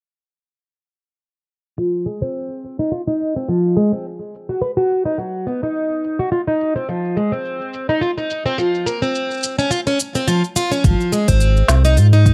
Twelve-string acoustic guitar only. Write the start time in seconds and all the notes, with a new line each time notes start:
1.78 F3
2.06 G#3
2.22 C4
2.79 D#4
2.92 F4
3.08 D#4
3.36 C4
3.49 F3
3.77 G#3
3.92 C4
4.49 F#4
4.62 B4
4.77 F#4
5.06 D#4
5.18 F#3
5.47 B3
5.63 D#4
6.19 F#4
6.32 F4
6.47 D#4
6.76 C4
6.89 F3
7.17 G#3
7.32 C4
7.89 D#4
8.01 F4
8.18 D#4
8.46 C4
8.58 F3
8.86 A#3
9.02 C4
9.59 C#4
9.71 F4
9.87 C#4
10.15 C4
10.28 F3
10.56 F4
10.72 C#4
10.85 F3
11.12 G#3
11.28 C4
11.85 D#4
11.97 F4
12.13 D#4